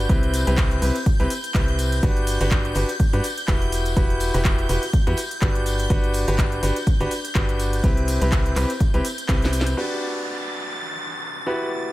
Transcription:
Already playing: G6
0.09 C2 C4 E4 G4 B4, kick, closed hi-hat
0.23 closed hi-hat
0.34 open hi-hat, tambourine
0.47 C2 C4 E4 G4 B4, closed hi-hat, tambourine
0.57 kick, clap, closed hi-hat, tambourine
0.71 closed hi-hat
0.82 C2 C4 E4 G4 B4, open hi-hat, tambourine
0.96 closed hi-hat, tambourine
1.06 kick, closed hi-hat, tambourine
1.20 C2 C4 E4 G4 B4, closed hi-hat
1.30 open hi-hat, tambourine
1.44 closed hi-hat, tambourine
1.54 C2 C4 E4 G4 B4, kick, clap, closed hi-hat, tambourine
1.68 closed hi-hat
1.78 open hi-hat, tambourine
1.92 closed hi-hat, tambourine
2.03 G1 D4 F#4 G4 B4, kick, closed hi-hat, tambourine
2.17 closed hi-hat
2.27 open hi-hat, tambourine
2.40 G1 D4 F#4 G4 B4, closed hi-hat, tambourine
2.50 kick, clap, closed hi-hat, tambourine
2.65 closed hi-hat
2.75 G1 D4 F#4 G4 B4, open hi-hat, tambourine
2.88 closed hi-hat, tambourine
3.00 kick, closed hi-hat, tambourine
3.13 G2 D4 F#4 G4 B4, closed hi-hat
3.24 open hi-hat, tambourine
3.37 closed hi-hat, tambourine
3.48 E1 E4 F#4 G4 B4, kick, clap, closed hi-hat
3.62 closed hi-hat
3.72 open hi-hat, tambourine
3.85 closed hi-hat, tambourine
3.96 E1 E4 F#4 G4 B4, kick, closed hi-hat, tambourine
4.10 closed hi-hat
4.20 open hi-hat, tambourine
4.34 E1 E4 F#4 G4 B4, closed hi-hat, tambourine
4.45 kick, clap, closed hi-hat
4.59 closed hi-hat
4.69 E1 E4 F#4 G4 B4, open hi-hat, tambourine
4.83 closed hi-hat, tambourine
4.93 kick, closed hi-hat, tambourine
5.07 E2 E4 F#4 G4 B4, closed hi-hat
5.17 open hi-hat, tambourine
5.31 closed hi-hat, tambourine
5.42 G1 D4 F#4 G4 B4, kick, clap, closed hi-hat
5.55 closed hi-hat
5.66 open hi-hat, tambourine
5.79 closed hi-hat, tambourine
5.90 G1 D4 F#4 G4 B4, kick, closed hi-hat, tambourine
6.04 closed hi-hat
6.14 open hi-hat, tambourine
6.28 G1 D4 F#4 G4 B4, closed hi-hat, tambourine
6.38 kick, clap, closed hi-hat, tambourine
6.52 closed hi-hat
6.63 G1 D4 F#4 G4 B4, open hi-hat, tambourine
6.76 closed hi-hat, tambourine
6.86 kick, closed hi-hat, tambourine
7.00 G1 D4 F#4 G4 B4, closed hi-hat
7.11 open hi-hat, tambourine
7.24 closed hi-hat, tambourine
7.35 G1 D4 F#4 G4 B4, kick, clap, closed hi-hat
7.49 closed hi-hat
7.60 open hi-hat, tambourine
7.73 closed hi-hat, tambourine
7.84 C2 C4 E4 G4 B4, kick, closed hi-hat, tambourine
7.97 closed hi-hat
8.08 open hi-hat, tambourine
8.21 C2 C4 E4 G4 B4, closed hi-hat, tambourine
8.32 kick, clap, closed hi-hat, tambourine
8.46 closed hi-hat
8.56 C2 C4 E4 G4 B4, clap, open hi-hat, tambourine
8.70 closed hi-hat, tambourine
8.80 kick, closed hi-hat, tambourine
8.94 C2 C4 E4 G4 B4, closed hi-hat
9.05 open hi-hat, tambourine
9.18 closed hi-hat, tambourine
9.29 C2 C4 E4 G4 B4, kick, snare, clap, closed hi-hat, tambourine
9.42 snare, closed hi-hat
9.53 open hi-hat, tambourine
9.61 snare
9.67 closed hi-hat, tambourine
9.77 D4 F#4 G4 B4 A6, downlifter
11.47 E4 F#4 G4 B4

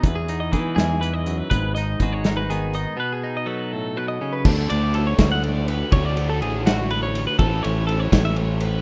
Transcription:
Already playing: E3 B3 G#4
0.03 E2 B4, kick, closed hi-hat
0.15 G#4
0.28 D#4, closed hi-hat
0.40 D#5
0.52 E3 G#4 B4, kick, closed hi-hat
0.76 E2 G#4, snare, closed hi-hat
1.01 E2 B4, closed hi-hat
1.14 D#5
1.26 F#2, closed hi-hat
1.38 B4
1.50 G#1 G#2 B4, kick, closed hi-hat
1.75 D#4 D#5, closed hi-hat
2.00 G#1 G#3 F#4 B4, kick, closed hi-hat
2.13 C#5
2.24 D#4, snare, closed hi-hat
2.37 B4
2.50 D#3 B3 G#4, closed hi-hat
2.74 D#4 D#5, closed hi-hat
2.97 B2 B4
3.12 G#4
3.24 D#4
3.37 D#5
3.46 F#3 A4 B4
3.72 A2 A4
3.97 B2 B4
4.08 D#5
4.21 C#3
4.33 B4
4.45 D2 D3 A3 D4 F#4 A4, kick, crash
4.70 D2 D5, ride
4.94 A4, ride
5.07 C#5
5.18 D2, kick, snare, ride
5.32 F#5
5.43 D5, ride
5.67 B4, ride
5.92 D2 D3 A3 D4 F#4 A4 C#5, kick, ride
6.05 D5
6.17 ride
6.29 A4
6.42 A1 G#4, ride
6.66 F#4, snare, ride
6.90 B4, ride
7.03 C#5
7.15 ride
7.27 B4
7.39 A1 A2 E3 A3 C#4 E4 A4, kick, ride
7.63 A1 C#5, ride
7.87 A4, ride
8.00 C#5
8.12 A1, kick, snare, ride
8.25 E5
8.36 C#5, ride
8.60 B4, ride

